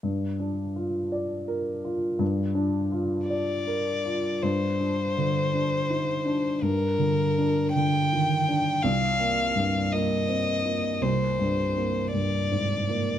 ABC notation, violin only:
X:1
M:6/8
L:1/8
Q:3/8=55
K:Gphr
V:1 name="Violin"
z6 | z3 d3 | c6 | B3 g3 |
f3 e3 | c3 d3 |]